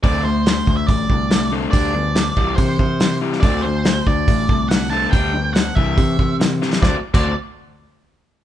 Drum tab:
CC |----------------|----------------|----------------|----------------|
HH |o---o---o---o---|o---o---o---o---|o---o---o---o---|o---o---o---o---|
SD |----o-------o---|----o-------o--o|----o-------o---|----o-------o-oo|
BD |o-----o-o-o-----|o-----o-o-o-----|o-----o-o-o-----|o-----o-o-o-----|

CC |---x------------|
HH |----------------|
SD |o---------------|
BD |o--o------------|